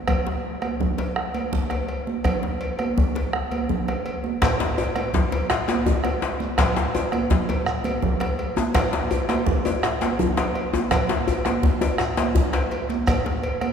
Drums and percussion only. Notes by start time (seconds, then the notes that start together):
0.08 bombo rim, bombo low, cowbell, low conga, djembe bass
0.26 bombo rim, djembe slap, djembe tone
0.45 djembe slap
0.62 bombo rim, cowbell, high conga
0.80 bombo low, djembe slap, djembe bass, low conga
0.98 cowbell, djembe slap, djembe tone
1.16 bombo rim, djembe slap
1.34 cowbell, high conga
1.52 bombo rim, bombo low, djembe slap, low conga, djembe bass
1.70 bombo rim, cowbell, djembe slap, djembe tone
1.89 bombo rim, cowbell
2.07 djembe slap, high conga
2.24 bombo rim, bombo low, cowbell, djembe bass, low conga
2.43 djembe slap, djembe tone
2.61 cowbell, djembe slap
2.79 bombo rim, cowbell, high conga
2.97 bombo rim, bombo low, djembe bass, low conga
3.15 cowbell, djembe slap, high conga, djembe tone
3.33 bombo rim, djembe slap, high conga
3.52 bombo rim, cowbell, high conga
3.69 bombo low, low conga, djembe bass
3.88 bombo rim, cowbell, djembe slap, djembe tone
4.06 bombo rim, cowbell, high conga
4.24 bombo rim, djembe slap, high conga
4.42 bombo rim, bombo low, cowbell, djembe slap, low conga, djembe bass, shekere
4.60 bombo rim, djembe slap, djembe tone
4.78 cowbell, djembe slap, djembe tone
4.96 bombo rim, cowbell, high conga
5.14 bombo low, djembe slap, low conga, djembe bass
5.32 cowbell, djembe slap, djembe tone, shekere
5.50 bombo rim, djembe slap, shekere
5.68 cowbell, djembe slap, high conga, shekere
5.86 bombo rim, bombo low, djembe slap, djembe tone, djembe bass, low conga
6.04 bombo rim, cowbell, djembe slap, djembe tone
6.22 bombo rim, cowbell, djembe slap
6.40 djembe slap, high conga, shekere
6.58 bombo rim, bombo low, cowbell, djembe slap, low conga, djembe bass, shekere
6.76 bombo rim, djembe slap, djembe tone
6.95 cowbell, djembe slap, djembe tone
7.12 bombo rim, cowbell, high conga
7.30 bombo low, djembe slap, low conga, djembe bass
7.49 cowbell, djembe slap, djembe tone, shekere
7.66 bombo rim, djembe slap, shekere
7.84 cowbell, high conga, shekere
8.02 bombo rim, bombo low, djembe slap, low conga, djembe bass
8.20 bombo rim, cowbell, djembe slap, djembe tone
8.39 bombo rim, cowbell
8.56 djembe slap, high conga, djembe tone, shekere
8.74 bombo rim, bombo low, cowbell, djembe slap, low conga, djembe bass, shekere
8.93 bombo rim, djembe slap, djembe tone
9.11 cowbell, djembe bass
9.29 bombo rim, cowbell, djembe slap, high conga
9.46 bombo low, djembe slap, low conga, djembe bass
9.65 cowbell, djembe tone, shekere
9.83 bombo rim, djembe slap, shekere
10.01 cowbell, djembe slap, high conga, shekere
10.19 bombo rim, djembe slap, low conga, djembe bass
10.37 bombo rim, cowbell, djembe slap, djembe tone
10.55 bombo rim, cowbell
10.73 djembe slap, high conga, djembe tone, shekere
10.91 bombo rim, bombo low, cowbell, djembe slap, high conga, low conga, djembe bass, shekere
11.09 bombo rim, djembe slap, djembe tone, high conga, shekere
11.27 bombo rim, cowbell, high conga, djembe bass, shekere
11.45 bombo rim, cowbell, djembe slap, high conga
11.63 bombo rim, bombo low, high conga, low conga, djembe bass
11.81 cowbell, djembe slap, high conga, djembe tone
11.98 bombo rim, djembe slap, high conga, shekere
12.17 cowbell, djembe slap, high conga, shekere
12.35 bombo low, high conga, djembe bass, low conga, shekere
12.53 bombo rim, cowbell, djembe slap, high conga, djembe bass, shekere
12.71 cowbell, djembe slap, shekere
12.89 bombo rim, djembe slap, high conga, shekere
13.07 bombo rim, bombo low, cowbell, djembe bass, low conga, shekere
13.25 bombo rim, djembe slap, djembe tone
13.44 cowbell, djembe slap
13.61 bombo rim, cowbell, high conga